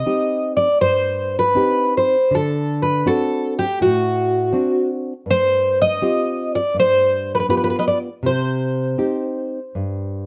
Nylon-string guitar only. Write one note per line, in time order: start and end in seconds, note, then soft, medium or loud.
0.06 0.67 C4 soft
0.06 0.67 D#4 soft
0.06 0.67 G4 soft
0.82 1.55 G2 medium
1.55 2.15 C4 soft
1.55 2.15 D#4 soft
1.55 2.16 G4 soft
2.31 3.03 D3 medium
3.06 3.65 C4 soft
3.06 3.65 D4 soft
3.06 3.65 F#4 soft
3.81 4.52 A2 medium
4.53 5.12 C4 soft
4.53 5.13 D4 soft
4.53 5.13 F#4 soft
5.26 5.99 G2 medium
6.02 6.60 C4 soft
6.02 6.61 F4 soft
6.02 6.60 G4 soft
6.74 7.46 G2 medium
7.49 8.08 B3 soft
7.49 8.09 F4 soft
7.49 8.08 G4 medium
8.23 8.95 C3 medium
8.98 9.58 C4 soft
8.98 9.59 D#4 soft
8.98 9.59 G4 soft
9.75 10.26 G2 medium